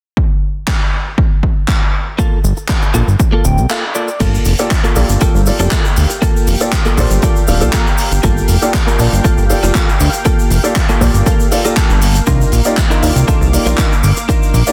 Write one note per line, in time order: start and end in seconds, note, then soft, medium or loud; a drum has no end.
0.17 kick loud
0.67 kick loud
0.67 clap loud
1.18 kick loud
1.43 kick medium
1.68 kick loud
1.68 clap loud
2.18 2.38 A#3 loud
2.18 2.38 F4 medium
2.18 2.38 A4 loud
2.18 kick loud
2.18 shaker soft
2.44 2.53 G1 loud
2.44 shaker medium
2.57 muted clean electric guitar stroke soft
2.57 shaker soft
2.69 kick loud
2.69 clap loud
2.69 shaker soft
2.82 muted clean electric guitar stroke soft
2.82 shaker soft
2.94 3.03 A#1 medium
2.94 3.07 A#3 medium
2.94 3.08 F4 medium
2.94 3.08 A4 medium
2.94 shaker medium
3.08 3.16 G1 medium
3.08 shaker soft
3.19 muted clean electric guitar stroke soft
3.19 kick loud
3.19 shaker medium
3.32 3.45 A#3 loud
3.32 3.45 F4 medium
3.32 3.45 A4 loud
3.45 3.60 D1 loud
3.45 3.68 G5 medium
3.45 shaker medium
3.58 3.66 C2 medium
3.58 muted clean electric guitar stroke soft
3.58 shaker soft
3.69 3.83 A#3 medium
3.69 3.83 F4 medium
3.69 3.83 A4 medium
3.69 3.93 F5 medium
3.69 clap loud
3.69 shaker medium
3.95 4.08 A#3 medium
3.95 4.08 F4 medium
3.95 4.09 A4 medium
3.95 4.19 D5 medium
3.95 shaker medium
4.08 shaker soft
4.20 4.38 G1 loud
4.20 4.52 A#3 loud
4.20 14.72 A#3 medium
4.20 4.52 F4 medium
4.20 12.23 G4 medium
4.20 4.52 A4 loud
4.20 12.23 F5 medium
4.20 12.23 G5 medium
4.20 kick loud
4.20 closed hi-hat medium
4.20 crash loud
4.20 shaker soft
4.20 shaker medium
4.35 shaker soft
4.45 4.55 F1 loud
4.45 open hi-hat loud
4.45 shaker medium
4.58 4.68 A#3 medium
4.58 4.68 F4 medium
4.58 4.68 G4 medium
4.58 4.69 A4 medium
4.58 4.69 D5 loud
4.58 closed hi-hat medium
4.58 shaker medium
4.58 shaker soft
4.71 kick loud
4.71 clap loud
4.71 closed hi-hat medium
4.71 shaker soft
4.71 shaker medium
4.84 5.03 A#3 medium
4.84 5.03 F4 medium
4.84 5.03 A4 medium
4.84 shaker soft
4.96 5.05 A#1 medium
4.96 5.44 A#3 medium
4.96 5.44 F4 medium
4.96 5.44 G4 medium
4.96 5.44 A4 medium
4.96 5.44 D5 medium
4.96 open hi-hat medium
4.96 shaker medium
5.09 5.17 G1 medium
5.09 closed hi-hat medium
5.09 shaker soft
5.09 shaker medium
5.21 5.40 A#3 medium
5.21 5.41 F4 medium
5.21 5.41 A4 loud
5.21 kick loud
5.21 closed hi-hat medium
5.21 shaker medium
5.35 5.51 G1 loud
5.35 shaker soft
5.46 5.57 A#3 medium
5.46 5.57 F4 medium
5.46 5.57 G4 medium
5.46 5.57 A4 medium
5.46 5.57 D5 medium
5.46 open hi-hat loud
5.46 shaker medium
5.59 5.68 F1 medium
5.59 5.85 A#3 medium
5.59 5.69 A#3 medium
5.59 5.69 F4 medium
5.59 5.85 F4 medium
5.59 5.69 G4 medium
5.59 5.85 A4 medium
5.59 5.69 A4 medium
5.59 5.69 D5 medium
5.59 closed hi-hat medium
5.59 shaker soft
5.59 shaker medium
5.71 kick loud
5.71 clap loud
5.71 closed hi-hat medium
5.71 shaker soft
5.71 shaker medium
5.85 shaker soft
5.96 6.06 D2 medium
5.96 open hi-hat loud
5.96 shaker medium
6.10 muted clean electric guitar stroke soft
6.10 closed hi-hat medium
6.10 shaker medium
6.10 shaker soft
6.22 6.54 A#3 loud
6.22 6.54 F4 medium
6.22 6.54 A4 loud
6.22 kick loud
6.22 closed hi-hat medium
6.22 shaker medium
6.37 shaker soft
6.47 6.56 F1 medium
6.47 open hi-hat loud
6.47 shaker medium
6.60 6.70 A#3 medium
6.60 6.70 F4 medium
6.60 6.70 G4 medium
6.60 6.70 A4 medium
6.60 6.70 D5 loud
6.60 closed hi-hat medium
6.60 shaker medium
6.60 shaker soft
6.72 kick loud
6.72 clap loud
6.72 closed hi-hat medium
6.72 shaker soft
6.72 shaker medium
6.85 7.04 A#3 medium
6.85 7.04 F4 medium
6.85 7.05 A4 medium
6.85 shaker soft
6.97 7.07 A#1 medium
6.97 7.45 A#3 medium
6.97 7.45 F4 medium
6.97 7.45 G4 medium
6.97 7.46 A4 medium
6.97 7.21 C5 medium
6.97 7.46 D5 medium
6.97 kick medium
6.97 open hi-hat loud
6.97 shaker medium
7.10 7.19 G1 medium
7.10 closed hi-hat medium
7.10 shaker soft
7.10 shaker medium
7.22 7.42 A#3 medium
7.22 7.42 F4 medium
7.22 7.42 A4 medium
7.22 7.46 D5 medium
7.22 kick loud
7.22 closed hi-hat medium
7.22 shaker medium
7.36 shaker soft
7.47 7.63 D1 medium
7.47 7.58 A#3 medium
7.47 7.58 F4 medium
7.47 7.58 G4 medium
7.47 7.58 A4 medium
7.47 7.58 D5 medium
7.47 7.72 F5 medium
7.47 open hi-hat loud
7.47 shaker medium
7.61 7.70 C2 loud
7.61 7.70 A#3 medium
7.61 7.86 A#3 medium
7.61 7.70 F4 medium
7.61 7.87 F4 medium
7.61 7.70 G4 medium
7.61 7.71 A4 medium
7.61 7.87 A4 loud
7.61 7.71 D5 medium
7.61 closed hi-hat medium
7.61 shaker soft
7.61 shaker medium
7.73 8.20 A#5 medium
7.73 kick loud
7.73 clap loud
7.73 closed hi-hat medium
7.73 shaker medium
7.87 shaker soft
7.98 open hi-hat loud
7.98 shaker medium
8.11 8.20 G1 medium
8.11 muted clean electric guitar stroke soft
8.11 closed hi-hat medium
8.11 shaker soft
8.11 shaker medium
8.23 8.41 G1 loud
8.23 8.55 A#3 loud
8.23 8.56 F4 medium
8.23 8.56 A4 loud
8.23 kick loud
8.23 closed hi-hat medium
8.23 shaker medium
8.37 shaker soft
8.48 8.58 F1 loud
8.48 open hi-hat loud
8.48 shaker medium
8.62 8.71 A#3 medium
8.62 8.71 F4 medium
8.62 8.71 G4 medium
8.62 8.72 A4 medium
8.62 8.72 D5 loud
8.62 closed hi-hat medium
8.62 shaker soft
8.62 shaker medium
8.74 kick loud
8.74 clap loud
8.74 closed hi-hat medium
8.74 shaker medium
8.87 9.06 A#3 medium
8.87 9.06 F4 medium
8.87 9.06 A#4 medium
8.87 shaker soft
8.99 9.08 A#1 medium
8.99 9.47 A#3 medium
8.99 9.47 F4 medium
8.99 9.47 G4 medium
8.99 9.47 D5 medium
8.99 9.47 A5 medium
8.99 open hi-hat loud
8.99 shaker medium
9.12 9.21 G1 medium
9.12 closed hi-hat medium
9.12 shaker soft
9.12 shaker medium
9.24 9.44 A#3 medium
9.24 9.44 F4 medium
9.24 9.44 A4 medium
9.24 kick loud
9.24 closed hi-hat medium
9.24 shaker medium
9.24 shaker soft
9.37 9.54 G1 medium
9.37 shaker soft
9.49 9.60 A#3 medium
9.49 9.60 F4 medium
9.49 9.60 G4 medium
9.49 9.60 A4 medium
9.49 9.60 D5 medium
9.49 open hi-hat medium
9.49 shaker medium
9.62 9.71 F1 medium
9.62 9.72 A#3 medium
9.62 9.88 A#3 medium
9.62 9.72 F4 medium
9.62 9.88 F4 medium
9.62 9.72 G4 medium
9.62 9.72 A4 medium
9.62 9.89 A4 medium
9.62 9.72 D5 medium
9.62 closed hi-hat medium
9.62 shaker soft
9.62 shaker medium
9.75 kick loud
9.75 clap loud
9.75 closed hi-hat medium
9.75 shaker medium
9.89 shaker soft
10.00 10.09 D2 medium
10.00 open hi-hat loud
10.00 shaker loud
10.13 muted clean electric guitar stroke soft
10.13 closed hi-hat medium
10.13 shaker medium
10.13 shaker soft
10.25 10.57 A#3 loud
10.25 10.57 F4 medium
10.25 10.58 A4 loud
10.25 kick loud
10.25 closed hi-hat medium
10.25 shaker medium
10.39 shaker soft
10.50 10.60 F1 medium
10.50 open hi-hat loud
10.50 shaker medium
10.63 10.73 A#3 medium
10.63 10.73 F4 medium
10.63 10.73 G4 medium
10.63 10.73 A4 medium
10.63 10.73 D5 loud
10.63 closed hi-hat medium
10.63 shaker soft
10.63 shaker medium
10.76 kick loud
10.76 clap loud
10.76 closed hi-hat medium
10.76 shaker soft
10.76 shaker medium
10.89 11.08 A#3 medium
10.89 11.08 F4 medium
10.89 11.08 A4 medium
10.89 shaker soft
11.00 11.10 A#1 medium
11.00 11.48 A#3 medium
11.00 11.48 F4 medium
11.00 11.48 G4 medium
11.00 11.49 A4 medium
11.00 11.49 D5 medium
11.00 11.25 D5 medium
11.00 kick medium
11.00 open hi-hat loud
11.00 shaker medium
11.14 11.22 G1 medium
11.14 closed hi-hat medium
11.14 shaker medium
11.14 shaker soft
11.26 11.46 A#3 medium
11.26 11.46 F4 medium
11.26 11.46 A4 medium
11.26 11.73 F5 medium
11.26 kick loud
11.26 closed hi-hat medium
11.26 shaker medium
11.40 shaker soft
11.51 11.61 A#3 medium
11.51 11.62 F4 medium
11.51 11.62 G4 medium
11.51 11.62 A4 medium
11.51 11.62 D5 medium
11.51 open hi-hat loud
11.51 shaker medium
11.64 11.74 A#3 medium
11.64 11.90 A#3 medium
11.64 11.74 F4 medium
11.64 11.90 F4 medium
11.64 11.74 G4 medium
11.64 11.74 A4 medium
11.64 11.90 A4 medium
11.64 11.74 D5 medium
11.64 closed hi-hat medium
11.64 shaker soft
11.64 shaker medium
11.77 12.24 A5 medium
11.77 kick loud
11.77 clap loud
11.77 closed hi-hat medium
11.77 shaker medium
11.90 12.21 G1 medium
11.90 shaker soft
12.01 open hi-hat loud
12.01 shaker medium
12.15 muted clean electric guitar stroke soft
12.15 closed hi-hat medium
12.15 shaker medium
12.15 shaker soft
12.27 12.45 C2 loud
12.27 12.59 D4 loud
12.27 12.59 D#4 medium
12.27 12.59 F4 medium
12.27 12.59 A#4 loud
12.27 14.72 F5 medium
12.27 14.72 D6 medium
12.27 kick loud
12.27 closed hi-hat medium
12.27 shaker medium
12.41 shaker soft
12.52 12.61 A#1 loud
12.52 open hi-hat medium
12.52 shaker medium
12.64 12.75 A#3 loud
12.64 12.75 D#4 medium
12.64 12.75 F4 medium
12.64 12.75 G4 medium
12.64 12.75 D5 loud
12.64 closed hi-hat medium
12.64 shaker medium
12.66 shaker soft
12.77 kick loud
12.77 clap loud
12.77 closed hi-hat medium
12.77 shaker medium
12.90 13.09 D4 medium
12.90 13.09 D#4 medium
12.90 13.10 F4 medium
12.90 13.10 A#4 medium
12.90 shaker soft
13.02 13.12 D#2 medium
13.02 13.50 D#3 medium
13.02 13.50 A#3 medium
13.02 13.50 F4 medium
13.02 13.51 G4 medium
13.02 13.51 D5 medium
13.02 open hi-hat loud
13.02 shaker medium
13.16 13.24 C2 medium
13.16 closed hi-hat medium
13.16 shaker medium
13.16 shaker soft
13.28 13.47 D4 medium
13.28 13.47 D#4 medium
13.28 13.47 F4 medium
13.28 13.47 A4 loud
13.28 kick loud
13.28 closed hi-hat medium
13.28 shaker medium
13.41 13.58 C2 loud
13.41 shaker soft
13.53 13.63 A#3 medium
13.53 13.63 D#4 medium
13.53 13.63 F4 medium
13.53 13.63 G4 medium
13.53 13.64 D5 medium
13.53 open hi-hat loud
13.53 shaker medium
13.66 13.74 A#1 loud
13.66 13.75 A#3 medium
13.66 13.91 D4 medium
13.66 13.76 D#4 medium
13.66 13.92 D#4 medium
13.66 13.76 F4 medium
13.66 13.92 F4 medium
13.66 13.76 G4 medium
13.66 13.92 A#4 medium
13.66 13.76 D5 medium
13.66 closed hi-hat medium
13.66 shaker soft
13.66 shaker medium
13.78 kick loud
13.78 clap loud
13.78 closed hi-hat medium
13.78 shaker medium
13.92 shaker soft
14.03 14.12 G1 medium
14.03 open hi-hat loud
14.03 shaker medium
14.17 muted clean electric guitar stroke soft
14.17 closed hi-hat medium
14.17 shaker medium
14.17 shaker soft
14.29 14.61 D4 loud
14.29 14.61 D#4 medium
14.29 14.61 F4 medium
14.29 14.61 A#4 loud
14.29 kick loud
14.29 closed hi-hat medium
14.29 shaker medium
14.43 shaker medium
14.54 14.63 A#1 loud
14.54 open hi-hat loud
14.54 shaker medium
14.66 14.72 A#3 medium
14.66 14.72 D#4 medium
14.66 14.72 F4 medium
14.66 14.72 G4 medium
14.66 14.72 D5 loud
14.66 closed hi-hat medium
14.66 shaker medium
14.66 shaker soft